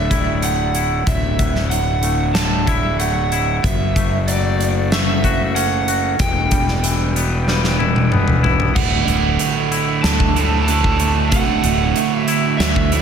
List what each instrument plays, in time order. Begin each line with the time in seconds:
Already playing: fingered electric bass D1, clean electric guitar D2 A2 D3 A3, ambient pad F#3 E4 D5, electric slide guitar E5
0.11 clean electric guitar E4, kick, closed hi-hat
0.42 clean electric guitar A3, electric slide guitar F#5, closed hi-hat
0.75 clean electric guitar E4, closed hi-hat
1.07 fingered electric bass D1, clean electric guitar D2, electric slide guitar E5, ambient pad E5, kick, closed hi-hat
1.39 clean electric guitar D3, kick, closed hi-hat
1.55 snare
1.70 clean electric guitar A2, electric slide guitar F#5, closed hi-hat
2.03 clean electric guitar A3, closed hi-hat
2.34 clean electric guitar D3, electric slide guitar A5, snare, closed hi-hat
2.67 clean electric guitar E4, electric slide guitar E5, kick, closed hi-hat
3.00 clean electric guitar A3, electric slide guitar F#5, closed hi-hat
3.32 clean electric guitar E4, closed hi-hat
3.64 fingered electric bass F#1, clean electric guitar F#2, ambient pad A3 F#4 A4, electric slide guitar E5, kick, closed hi-hat
3.96 clean electric guitar A3, kick, closed hi-hat
4.28 clean electric guitar F#3, electric slide guitar D5, closed hi-hat
4.61 closed hi-hat
4.92 clean electric guitar A3, electric slide guitar E5, snare, closed hi-hat
5.24 clean electric guitar F#4, kick, closed hi-hat
5.55 clean electric guitar C#4, electric slide guitar F#5, closed hi-hat
5.88 clean electric guitar F#4, closed hi-hat
6.19 fingered electric bass E1, clean electric guitar E2, ambient pad G3 E4 B4, electric slide guitar G5, kick, closed hi-hat
6.51 clean electric guitar G3, kick, closed hi-hat
6.68 snare
6.84 clean electric guitar E3, closed hi-hat
7.16 clean electric guitar B3, closed hi-hat
7.48 clean electric guitar G3, snare
7.64 snare
7.79 clean electric guitar E4, high tom
7.96 high tom
8.12 clean electric guitar B3, mid tom
8.28 mid tom
8.43 clean electric guitar E4, floor tom
8.60 floor tom
8.75 fingered electric bass D1, overdriven electric guitar D2 A2 D3 A3 E4, clean electric guitar D2, ambient pad D4 F#4 E5, electric slide guitar F#5, kick, crash
9.07 fingered electric bass D1, clean electric guitar D3, closed hi-hat
9.39 clean electric guitar A3, closed hi-hat
9.72 clean electric guitar E4, closed hi-hat
10.03 fingered electric bass D2, clean electric guitar D3, electric slide guitar A5, snare, closed hi-hat
10.20 kick
10.36 overdriven electric guitar D2 A2 D3 A3 E4, clean electric guitar A2, closed hi-hat
10.65 overdriven electric guitar D2 A2, clean electric guitar D3, electric slide guitar A5, closed hi-hat
10.69 overdriven electric guitar D3 A3 E4
10.84 kick
11.00 clean electric guitar A3, closed hi-hat
11.29 fingered electric bass D1, overdriven electric guitar D2 A2, clean electric guitar D2, electric slide guitar F#5, kick, closed hi-hat
11.33 overdriven electric guitar D3 A3 E4
11.64 fingered electric bass D1, clean electric guitar D3, closed hi-hat
11.96 clean electric guitar A3, closed hi-hat
12.20 electric slide guitar E5
12.28 clean electric guitar E4, closed hi-hat
12.57 fingered electric bass D2, clean electric guitar D3, electric slide guitar E5, snare, closed hi-hat
12.76 kick
12.92 overdriven electric guitar D2 A2 D3 A3 E4, clean electric guitar A2, closed hi-hat